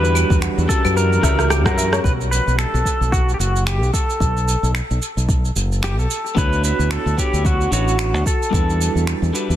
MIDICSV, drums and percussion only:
0, 0, Header, 1, 2, 480
1, 0, Start_track
1, 0, Key_signature, 2, "minor"
1, 0, Tempo, 540541
1, 1813, Time_signature, 4, 2, 24, 8
1, 8489, End_track
2, 0, Start_track
2, 0, Title_t, "Drums"
2, 40, Note_on_c, 9, 82, 21
2, 129, Note_off_c, 9, 82, 0
2, 134, Note_on_c, 9, 75, 77
2, 143, Note_on_c, 9, 82, 73
2, 223, Note_off_c, 9, 75, 0
2, 232, Note_off_c, 9, 82, 0
2, 268, Note_on_c, 9, 36, 99
2, 279, Note_on_c, 9, 82, 30
2, 357, Note_off_c, 9, 36, 0
2, 368, Note_off_c, 9, 82, 0
2, 374, Note_on_c, 9, 26, 81
2, 382, Note_on_c, 9, 82, 44
2, 463, Note_off_c, 9, 26, 0
2, 471, Note_off_c, 9, 82, 0
2, 519, Note_on_c, 9, 82, 20
2, 608, Note_off_c, 9, 82, 0
2, 613, Note_on_c, 9, 36, 96
2, 622, Note_on_c, 9, 82, 74
2, 702, Note_off_c, 9, 36, 0
2, 711, Note_off_c, 9, 82, 0
2, 752, Note_on_c, 9, 75, 84
2, 761, Note_on_c, 9, 82, 32
2, 841, Note_off_c, 9, 75, 0
2, 849, Note_off_c, 9, 82, 0
2, 863, Note_on_c, 9, 82, 46
2, 952, Note_off_c, 9, 82, 0
2, 1001, Note_on_c, 9, 82, 23
2, 1090, Note_off_c, 9, 82, 0
2, 1093, Note_on_c, 9, 36, 58
2, 1094, Note_on_c, 9, 37, 58
2, 1103, Note_on_c, 9, 82, 75
2, 1182, Note_off_c, 9, 36, 0
2, 1183, Note_off_c, 9, 37, 0
2, 1192, Note_off_c, 9, 82, 0
2, 1232, Note_on_c, 9, 37, 59
2, 1240, Note_on_c, 9, 82, 31
2, 1321, Note_off_c, 9, 37, 0
2, 1329, Note_off_c, 9, 82, 0
2, 1335, Note_on_c, 9, 37, 83
2, 1335, Note_on_c, 9, 75, 88
2, 1344, Note_on_c, 9, 82, 48
2, 1424, Note_off_c, 9, 37, 0
2, 1424, Note_off_c, 9, 75, 0
2, 1433, Note_off_c, 9, 82, 0
2, 1470, Note_on_c, 9, 36, 59
2, 1470, Note_on_c, 9, 37, 74
2, 1479, Note_on_c, 9, 82, 21
2, 1558, Note_off_c, 9, 36, 0
2, 1559, Note_off_c, 9, 37, 0
2, 1568, Note_off_c, 9, 82, 0
2, 1584, Note_on_c, 9, 82, 73
2, 1673, Note_off_c, 9, 82, 0
2, 1711, Note_on_c, 9, 37, 89
2, 1720, Note_on_c, 9, 82, 33
2, 1800, Note_off_c, 9, 37, 0
2, 1808, Note_off_c, 9, 82, 0
2, 1813, Note_on_c, 9, 36, 110
2, 1824, Note_on_c, 9, 82, 40
2, 1902, Note_off_c, 9, 36, 0
2, 1912, Note_off_c, 9, 82, 0
2, 1961, Note_on_c, 9, 82, 21
2, 2050, Note_off_c, 9, 82, 0
2, 2065, Note_on_c, 9, 82, 72
2, 2154, Note_off_c, 9, 82, 0
2, 2201, Note_on_c, 9, 82, 29
2, 2290, Note_off_c, 9, 82, 0
2, 2297, Note_on_c, 9, 26, 97
2, 2305, Note_on_c, 9, 82, 38
2, 2385, Note_off_c, 9, 26, 0
2, 2394, Note_off_c, 9, 82, 0
2, 2442, Note_on_c, 9, 82, 21
2, 2530, Note_off_c, 9, 82, 0
2, 2534, Note_on_c, 9, 36, 51
2, 2545, Note_on_c, 9, 82, 73
2, 2623, Note_off_c, 9, 36, 0
2, 2634, Note_off_c, 9, 82, 0
2, 2682, Note_on_c, 9, 82, 31
2, 2771, Note_off_c, 9, 82, 0
2, 2774, Note_on_c, 9, 36, 115
2, 2785, Note_on_c, 9, 82, 44
2, 2863, Note_off_c, 9, 36, 0
2, 2874, Note_off_c, 9, 82, 0
2, 2921, Note_on_c, 9, 82, 23
2, 3010, Note_off_c, 9, 82, 0
2, 3025, Note_on_c, 9, 82, 70
2, 3114, Note_off_c, 9, 82, 0
2, 3161, Note_on_c, 9, 82, 33
2, 3250, Note_off_c, 9, 82, 0
2, 3257, Note_on_c, 9, 26, 99
2, 3265, Note_on_c, 9, 82, 43
2, 3346, Note_off_c, 9, 26, 0
2, 3354, Note_off_c, 9, 82, 0
2, 3401, Note_on_c, 9, 82, 21
2, 3490, Note_off_c, 9, 82, 0
2, 3494, Note_on_c, 9, 36, 91
2, 3501, Note_on_c, 9, 82, 73
2, 3583, Note_off_c, 9, 36, 0
2, 3590, Note_off_c, 9, 82, 0
2, 3639, Note_on_c, 9, 82, 33
2, 3728, Note_off_c, 9, 82, 0
2, 3733, Note_on_c, 9, 36, 104
2, 3742, Note_on_c, 9, 82, 43
2, 3822, Note_off_c, 9, 36, 0
2, 3831, Note_off_c, 9, 82, 0
2, 3881, Note_on_c, 9, 82, 21
2, 3969, Note_off_c, 9, 82, 0
2, 3983, Note_on_c, 9, 82, 71
2, 4072, Note_off_c, 9, 82, 0
2, 4120, Note_on_c, 9, 82, 29
2, 4208, Note_off_c, 9, 82, 0
2, 4215, Note_on_c, 9, 26, 98
2, 4224, Note_on_c, 9, 82, 41
2, 4304, Note_off_c, 9, 26, 0
2, 4313, Note_off_c, 9, 82, 0
2, 4358, Note_on_c, 9, 82, 22
2, 4447, Note_off_c, 9, 82, 0
2, 4461, Note_on_c, 9, 82, 75
2, 4549, Note_off_c, 9, 82, 0
2, 4598, Note_on_c, 9, 82, 32
2, 4687, Note_off_c, 9, 82, 0
2, 4694, Note_on_c, 9, 36, 123
2, 4701, Note_on_c, 9, 82, 46
2, 4783, Note_off_c, 9, 36, 0
2, 4790, Note_off_c, 9, 82, 0
2, 4838, Note_on_c, 9, 82, 23
2, 4927, Note_off_c, 9, 82, 0
2, 4941, Note_on_c, 9, 82, 72
2, 5029, Note_off_c, 9, 82, 0
2, 5080, Note_on_c, 9, 82, 31
2, 5169, Note_off_c, 9, 82, 0
2, 5175, Note_on_c, 9, 26, 100
2, 5183, Note_on_c, 9, 82, 46
2, 5263, Note_off_c, 9, 26, 0
2, 5272, Note_off_c, 9, 82, 0
2, 5320, Note_on_c, 9, 82, 20
2, 5409, Note_off_c, 9, 82, 0
2, 5423, Note_on_c, 9, 82, 71
2, 5512, Note_off_c, 9, 82, 0
2, 5560, Note_on_c, 9, 82, 35
2, 5649, Note_off_c, 9, 82, 0
2, 5654, Note_on_c, 9, 36, 115
2, 5662, Note_on_c, 9, 82, 42
2, 5743, Note_off_c, 9, 36, 0
2, 5751, Note_off_c, 9, 82, 0
2, 5798, Note_on_c, 9, 82, 21
2, 5886, Note_off_c, 9, 82, 0
2, 5899, Note_on_c, 9, 82, 76
2, 5988, Note_off_c, 9, 82, 0
2, 6037, Note_on_c, 9, 82, 33
2, 6126, Note_off_c, 9, 82, 0
2, 6134, Note_on_c, 9, 26, 97
2, 6142, Note_on_c, 9, 82, 42
2, 6223, Note_off_c, 9, 26, 0
2, 6231, Note_off_c, 9, 82, 0
2, 6278, Note_on_c, 9, 82, 21
2, 6367, Note_off_c, 9, 82, 0
2, 6374, Note_on_c, 9, 36, 60
2, 6382, Note_on_c, 9, 82, 76
2, 6463, Note_off_c, 9, 36, 0
2, 6471, Note_off_c, 9, 82, 0
2, 6517, Note_on_c, 9, 82, 30
2, 6606, Note_off_c, 9, 82, 0
2, 6614, Note_on_c, 9, 36, 124
2, 6621, Note_on_c, 9, 82, 45
2, 6703, Note_off_c, 9, 36, 0
2, 6710, Note_off_c, 9, 82, 0
2, 6758, Note_on_c, 9, 82, 23
2, 6847, Note_off_c, 9, 82, 0
2, 6861, Note_on_c, 9, 82, 72
2, 6950, Note_off_c, 9, 82, 0
2, 6998, Note_on_c, 9, 82, 33
2, 7087, Note_off_c, 9, 82, 0
2, 7094, Note_on_c, 9, 26, 97
2, 7103, Note_on_c, 9, 82, 45
2, 7183, Note_off_c, 9, 26, 0
2, 7192, Note_off_c, 9, 82, 0
2, 7240, Note_on_c, 9, 82, 22
2, 7328, Note_off_c, 9, 82, 0
2, 7334, Note_on_c, 9, 36, 97
2, 7344, Note_on_c, 9, 82, 77
2, 7422, Note_off_c, 9, 36, 0
2, 7433, Note_off_c, 9, 82, 0
2, 7482, Note_on_c, 9, 82, 35
2, 7570, Note_off_c, 9, 82, 0
2, 7573, Note_on_c, 9, 36, 116
2, 7586, Note_on_c, 9, 82, 43
2, 7662, Note_off_c, 9, 36, 0
2, 7675, Note_off_c, 9, 82, 0
2, 7724, Note_on_c, 9, 82, 22
2, 7812, Note_off_c, 9, 82, 0
2, 7827, Note_on_c, 9, 82, 75
2, 7916, Note_off_c, 9, 82, 0
2, 7963, Note_on_c, 9, 82, 31
2, 8052, Note_off_c, 9, 82, 0
2, 8057, Note_on_c, 9, 26, 91
2, 8066, Note_on_c, 9, 82, 42
2, 8146, Note_off_c, 9, 26, 0
2, 8155, Note_off_c, 9, 82, 0
2, 8200, Note_on_c, 9, 82, 22
2, 8289, Note_off_c, 9, 82, 0
2, 8304, Note_on_c, 9, 82, 77
2, 8393, Note_off_c, 9, 82, 0
2, 8442, Note_on_c, 9, 82, 30
2, 8489, Note_off_c, 9, 82, 0
2, 8489, End_track
0, 0, End_of_file